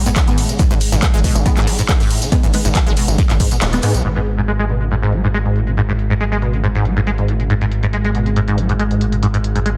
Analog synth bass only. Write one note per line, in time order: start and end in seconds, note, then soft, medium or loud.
0.71 0.79 G#1 loud
0.92 1.00 G#1 medium
1.14 1.22 G#1 medium
1.35 1.44 G#1 loud
1.57 1.65 G#1 loud
2.44 2.52 G#1 loud
2.65 2.73 G#1 medium
2.87 2.95 G#1 medium
3.08 3.16 G#1 loud
3.30 3.38 G#1 loud
3.62 3.79 D#1 loud
3.83 3.92 G#2 medium
3.94 4.03 B1 loud
4.05 9.77 G#1 medium